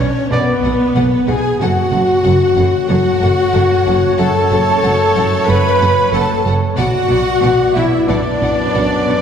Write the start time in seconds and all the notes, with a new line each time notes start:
Already playing: C#4 C#5
0.00 C#5
0.29 B1 F#2 B2 B3 B4 D5 F#5
0.63 B1 B2 B4 F#5
0.95 B1 B2 B4 F#5
1.27 B1 B2 G#4 B4 F#5 G#5
1.60 F#1 F#2 A3 F#4 A4 C#5 F#5
1.91 F#1 F#2 A4 F#5
2.23 F#1 F#2 A4 F#5
2.56 F#1 F#2 A4 F#5
2.88 F#1 F#2 F#4 A4 F#5
3.21 F#1 F#2 A4 F#5
3.52 F#1 F#2 A4 F#5
3.86 F#1 F#2 A4 F#5
4.18 F#1 F#2 A4 F#5 A5
4.49 F#1 F#2 A4 F#5
4.83 F#1 F#2 A4 F#5
5.15 F#1 F#2 A4 F#5
5.47 F#1 F#2 A4 B4 F#5 B5
5.80 F#1 F#2 A4 F#5
6.12 F#1 F#2 A4 F#5 A5
6.44 F#1 F#2 A4 F#5
6.77 B1 F#2 B2 B3 F#4 D5 F#5
7.09 B1 B2 D5 F#5
7.42 B1 B2 D5 F#5
7.75 B1 B2 E4 D5 E5 F#5
8.07 B1 B2 D4 D5 F#5
8.41 B1 B2 D5 F#5
8.74 B1 B2 D5 F#5
9.07 B1 B2 D5 F#5